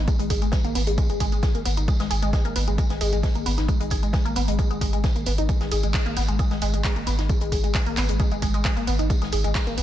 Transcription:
0.08 G#3, kick, closed hi-hat, tambourine
0.19 G#1 G#3, closed hi-hat
0.30 G#1 G#4, kick, open hi-hat, tambourine
0.42 G#1 G#3, closed hi-hat
0.52 G#3, kick, snare, closed hi-hat, tambourine
0.65 G#1 A#3, closed hi-hat
0.75 G#1 B3, open hi-hat, tambourine
0.87 G#1 G#3, closed hi-hat
0.98 G#3, kick, closed hi-hat, tambourine
1.10 G#1 G#3, closed hi-hat
1.20 G#1 G#3, kick, open hi-hat, tambourine
1.32 G#1 G#3, closed hi-hat
1.43 G#3, kick, snare, closed hi-hat, tambourine
1.55 G#1 A#3, closed hi-hat
1.65 G#1 B3, open hi-hat, tambourine
1.77 G#1 D#4, closed hi-hat
1.88 G#3, kick, closed hi-hat, tambourine
2.00 G#1 G#3, snare, closed hi-hat
2.11 G#1 G#4, open hi-hat, tambourine
2.22 G#1 G#3, closed hi-hat
2.33 G#3, kick, snare, closed hi-hat, tambourine
2.45 G#1 A#3, closed hi-hat
2.56 G#1 B3, open hi-hat, tambourine
2.68 G#1 G#3, closed hi-hat
2.78 G#3, kick, closed hi-hat, tambourine
2.90 G#1 G#3, snare, closed hi-hat
3.01 G#1 G#3, open hi-hat, tambourine
3.13 G#1 G#3, closed hi-hat
3.23 G#3, kick, snare, closed hi-hat, tambourine
3.35 G#1 A#3, closed hi-hat
3.46 G#1 B3, open hi-hat, tambourine
3.58 G#1 D#4, snare, closed hi-hat
3.68 G#3, kick, closed hi-hat, tambourine
3.80 G#1 G#3, closed hi-hat
3.90 G#1 G#4, kick, open hi-hat, tambourine
4.03 G#1 G#3, closed hi-hat
4.13 G#3, kick, snare, closed hi-hat, tambourine
4.25 G#1 A#3, closed hi-hat
4.36 G#1 B3, open hi-hat, tambourine
4.48 G#1 G#3, closed hi-hat
4.59 G#3, kick, closed hi-hat, tambourine
4.71 G#1 G#3, closed hi-hat
4.81 G#1 G#3, kick, open hi-hat, tambourine
4.93 G#1 G#3, closed hi-hat
5.04 G#3, kick, snare, closed hi-hat, tambourine
5.16 G#1 A#3, closed hi-hat
5.26 G#1 B3, open hi-hat, tambourine
5.38 G#1 D#4, closed hi-hat
5.49 G#3, kick, closed hi-hat, tambourine
5.60 G#1 G#3, snare, closed hi-hat
5.72 G#1 G#4, open hi-hat, tambourine
5.83 G#1 G#3, closed hi-hat
5.94 G#3, kick, snare, clap, closed hi-hat, tambourine
6.06 G#1 A#3, closed hi-hat
6.16 G#1 B3, open hi-hat, tambourine
6.28 G#1 G#3, closed hi-hat
6.39 G#3, kick, closed hi-hat, tambourine
6.51 G#1 G#3, snare, closed hi-hat
6.61 G#1 G#3, open hi-hat, tambourine
6.74 G#1 G#3, closed hi-hat
6.84 G#3, kick, snare, clap, closed hi-hat, tambourine
6.96 G#1 A#3, closed hi-hat
7.06 G#1 B3, open hi-hat, tambourine
7.19 G#1 D#4, snare, closed hi-hat
7.29 G#3, kick, closed hi-hat, tambourine
7.41 G#1 G#3, closed hi-hat
7.52 G#1 G#4, kick, open hi-hat, tambourine
7.64 G#1 G#3, closed hi-hat
7.74 G#3, kick, snare, clap, closed hi-hat, tambourine
7.86 G#1 A#3, closed hi-hat
7.97 G#1 B3, clap, open hi-hat, tambourine
8.09 G#1 G#3, closed hi-hat
8.20 G#3, kick, closed hi-hat, tambourine
8.32 G#1 G#3, closed hi-hat
8.42 G#1 G#3, kick, open hi-hat, tambourine
8.54 G#1 G#3, closed hi-hat
8.65 G#3, kick, snare, clap, closed hi-hat, tambourine
8.77 G#1 A#3, closed hi-hat
8.87 G#1 B3, open hi-hat, tambourine
8.99 G#1 D#4, closed hi-hat
9.10 G#3, kick, closed hi-hat, tambourine
9.22 G#1 G#3, snare, closed hi-hat
9.32 G#1 G#4, open hi-hat, tambourine
9.44 G#1 G#3, closed hi-hat
9.55 G#3, kick, snare, clap, closed hi-hat, tambourine
9.67 G#1 A#3, closed hi-hat
9.77 G#1 B3, open hi-hat, tambourine

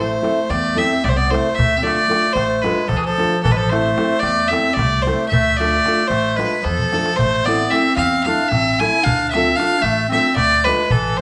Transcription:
Already playing: A1 A3 C4 E4 A4
0.00 C5
0.22 A3 C4 E4 A4, darbuka tek
0.38 darbuka tek
0.50 E2 A3 D5, darbuka tek
0.75 A3 C4 E4 A4 E5
0.93 darbuka tek
1.04 C2 A3 D5, darbuka tek, darbuka dum
1.09 A3 C5
1.15 B3 D5
1.30 A3 C4 E4 A4 C5
1.34 darbuka tek
1.55 D2 A3 E5
1.59 darbuka dum
1.77 C4 E5
1.82 A3 D4 F4 A4 D5
1.87 darbuka tek
2.08 A3 D4 F4 A4, darbuka tek
2.25 darbuka tek
2.33 A1 A3 C5, darbuka tek
2.50 darbuka tek
2.62 G#3 A3 D4 F4 A4 B4, darbuka tek
2.78 darbuka tek
2.88 D2 F3 A4, darbuka tek, darbuka dum
2.97 E3 G#4
3.04 F3 A4, darbuka tek
3.17 A3 D4 F4 A4, darbuka tek
3.43 A1 E3 A4, darbuka dum
3.51 G#3 B4
3.57 F3 A4
3.70 A3 C4 E4 A4 C5, darbuka tek
3.97 A3 C4 E4 A4, darbuka tek
4.11 darbuka tek
4.20 E2 A3 D5, darbuka tek
4.39 darbuka tek
4.48 A3 C4 E4 E5
4.52 A4, darbuka tek
4.66 darbuka tek
4.74 C2 D5
4.78 A3, darbuka tek, darbuka dum
4.93 darbuka tek
5.02 A3 C5
5.06 C4 E4 A4, darbuka tek
5.29 D2 A3 E5
5.33 darbuka dum
5.47 darbuka tek
5.56 A3 D4 F4 D5
5.61 A4, darbuka tek
5.74 darbuka tek
5.86 A3 D4 F4 A4, darbuka tek
5.98 darbuka tek
6.07 A1 A3 C5
6.11 darbuka tek
6.36 G#3 A3 D4 F4 A4 B4, darbuka tek
6.53 darbuka tek
6.62 E2 F3 A4, darbuka tek
6.79 darbuka dum
6.92 A3 D4 F4 A4, darbuka tek
7.06 darbuka tek
7.16 A1 A3 C5, darbuka dum
7.45 A3 B3 C4 E4 A4 D5, darbuka tek
7.70 A3 C4 E4 A4 E5, darbuka tek
7.86 darbuka tek
7.96 E2 C4 F5, darbuka tek
8.13 darbuka tek
8.23 A3 C4 D4 E4 A4 F5, darbuka tek
8.40 darbuka tek
8.48 A1 C4 E5, darbuka tek, darbuka dum
8.67 darbuka tek
8.79 A3 C4 E4 A4 G#5, darbuka tek
9.03 D2 D4 F5, darbuka dum
9.31 A3 C4 E5, darbuka tek
9.35 D4 F4 A4
9.56 A3 D4 F5, darbuka tek
9.60 D4 F4 A4
9.72 darbuka tek
9.81 A1 A3 E5
9.85 darbuka tek
9.99 darbuka tek
10.08 C4 D4 E5, darbuka tek
10.12 A3 F4 A4
10.25 darbuka tek
10.36 D2 A3 D5, darbuka tek, darbuka dum
10.50 darbuka tek
10.64 G#3 A3 D4 F4 A4 B4, darbuka tek
10.90 A1 E3 A4, darbuka dum
11.17 C5

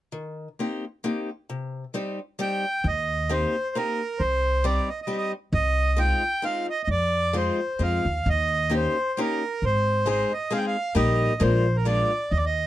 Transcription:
0.12 D#3
0.59 A#3 C4 D#4 G4
1.04 A#3 C4 D#4 G4
1.50 C3
1.94 G3 C4 D#4 G4
2.39 G3 C4 D#4 G4 G5
2.84 D#2 D#5
3.29 A#3 C4 D#4 G4 C5
3.75 A#3 C4 D#4 G4 A#4
4.19 C2 C5
4.64 G3 C4 D#4 G4 D5
4.88 D#5
5.02 D#5
5.07 G3 C4 D#4 G4
5.17 D#5
5.53 C2 D#5
5.97 G#3 C4 D#4 F4 G5
6.42 G#3 C4 D#4 F4 F5
6.70 D#5
6.83 D#5
6.87 F2 D5
7.33 G#3 C4 D#4 F4 C5
7.79 F2 G#3 C4 D#4 F4 F5
8.05 D#2
8.26 D#2 D#5
8.70 A#3 C#4 D#4 G4
8.75 C5
9.17 A#3 C#4 D#4 G4 A#4
9.62 G#1 C5
10.06 G#3 C4 D#4 G#4 C5
10.33 D#5
10.51 G#3 C4 D#4 G#4 F5
10.57 G5
10.67 F5
10.95 A#1 G3 A#3 D#4 G4 D#5
11.40 A#1 G#3 A#3 D4 F4 C5
11.76 A#4
11.85 G#3 A#3 D4 F4 D5
12.31 D#2 D#5
12.37 D5
12.46 D#5

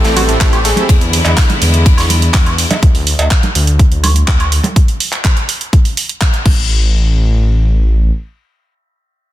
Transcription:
Already playing: A2 E3 G3 A3 C4 E4 G4 A4
0.04 A1 A3, snare, closed hi-hat
0.16 A2 C4 E4 F#4 G4 A4, open hi-hat, ride, high conga, high woodblock
0.29 A3, closed hi-hat
0.40 A2 A3 C4 E4 G4 A4, kick, snare, clap, closed hi-hat, ride
0.53 G4, closed hi-hat, high woodblock
0.64 A3 G#4, snare, open hi-hat, ride
0.76 A3 C4 E4 G4 A4, closed hi-hat, high conga
0.89 E2 D3 G#3 B3 E4, kick, closed hi-hat, ride
1.01 closed hi-hat
1.13 open hi-hat, ride
1.25 E2, clap, closed hi-hat, cowbell
1.37 kick, snare, clap, closed hi-hat, ride
1.50 closed hi-hat, high conga
1.62 E2, open hi-hat, ride
1.74 closed hi-hat
1.86 kick, closed hi-hat, ride
1.97 E2, snare, open hi-hat, high woodblock
2.10 open hi-hat, ride, high conga
2.22 closed hi-hat
2.33 kick, snare, clap, closed hi-hat, ride
2.46 closed hi-hat, high woodblock
2.58 open hi-hat, ride
2.71 closed hi-hat, cowbell, high conga
2.83 D2, kick, closed hi-hat
2.95 open hi-hat
3.07 open hi-hat
3.19 D2, closed hi-hat, cowbell
3.31 kick, clap, closed hi-hat
3.43 closed hi-hat, high conga
3.55 D2, open hi-hat
3.67 closed hi-hat
3.79 kick, closed hi-hat
3.91 D2, closed hi-hat
4.03 open hi-hat, high conga, high woodblock
4.16 closed hi-hat
4.28 kick, clap, closed hi-hat
4.40 closed hi-hat, high woodblock
4.52 open hi-hat
4.64 closed hi-hat, high conga
4.76 kick, closed hi-hat
4.88 closed hi-hat
5.00 open hi-hat
5.13 clap, closed hi-hat
5.25 kick, clap, closed hi-hat
5.37 closed hi-hat
5.49 open hi-hat
5.61 closed hi-hat
5.73 kick, closed hi-hat
5.85 open hi-hat
5.97 open hi-hat
6.09 closed hi-hat
6.21 kick, clap, closed hi-hat
6.34 closed hi-hat
6.46 A1, kick, crash

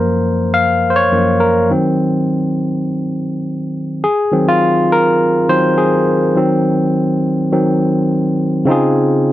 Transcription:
Already playing: F#2 F3 A#3 A#4 C5
0.54 F5
0.90 C5
0.96 C#5
1.12 F#2 F3 A#3
1.40 A#4
1.70 D#3 F#3 C4
4.04 G#4
4.32 D#3 F#3 C4
4.48 F4
4.92 A#4
5.49 D#3 F#3 C4 C5
5.78 G#4
6.36 D#3 F#3 C4
7.52 D#3 F#3 C4
8.65 C#3 C4 D#4
8.70 F4 G#4

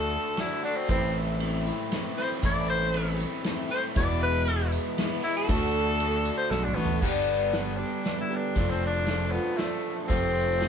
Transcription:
Already playing: D2 D3 A3 D4 F#4 A4
0.37 D3 A3 D4 E4 F#4, snare, ride
0.63 D3 A3 D4 F#4
0.76 C4
0.87 A1 A2 E3 A3 C4 E4 A4 C5, kick, ride, tambourine
1.02 tambourine
1.40 E3 A3 C4 E4, ride
1.66 A3 C4 E4, tambourine
1.79 tambourine
1.92 E3 A3 C4 E4, snare, ride
2.17 A2 E3 A3 C4 E4 C5
2.42 A1 A2 E3 A3 C4 E4 D5, kick, ride, tambourine
2.56 tambourine
2.70 C5
2.94 E3 A3 C4 E4, ride
3.20 tambourine
3.32 tambourine
3.44 E3 A3 C4 E4, snare, ride
3.71 A2 E3 A3 C4 E4 C5
3.94 E1 B3 E4 G#4 B4 D5, kick, ride, tambourine
3.98 E2 B2 E3 G#3 B3 E4
4.09 tambourine
4.23 B4
4.47 E3 G#3 B3 E4, ride
4.72 E4 G#4 B4, tambourine
4.85 tambourine
4.98 E3 G#3 B3 E4, snare, ride
5.24 E2 B2 E3 G#3 B3 E4
5.37 A4
5.47 D2 D3 A3 D4 F#4 A4, kick, ride, tambourine
5.51 D4 F#4
5.75 tambourine
6.00 D3 A3 D4 F#4, ride
6.25 tambourine
6.37 C5, tambourine
6.50 B1 D3 A3 D4 F#4 A4, snare, tambourine
6.64 D4, tambourine
6.68 mid tom
6.75 A1 D3 A3 B3 D4 F#4, tambourine
6.85 floor tom
7.00 G1 G2 D3 G3 B3 D4 G4 B4, kick, crash
7.53 G3 B3 D4 G4, snare, closed hi-hat
7.77 D4 G4
7.81 G3 B3
8.03 G3 B3 D4 G4, snare, closed hi-hat
8.21 E4
8.29 G3 B3 D4 G4 B4
8.36 D4
8.54 F1 F3 A3 D4 F4 A4, kick, closed hi-hat
8.70 C4
8.87 D4
9.07 F3 A3 D4 F4, snare, closed hi-hat
9.31 B3 D4 F4
9.35 A3
9.57 F3 A3 D4 F4, snare, closed hi-hat
10.07 F1 F2 C3 F3 A3 C4 A4, kick, closed hi-hat, tambourine
10.11 F4
10.36 tambourine
10.59 F3 A3 C4 F4, snare, closed hi-hat

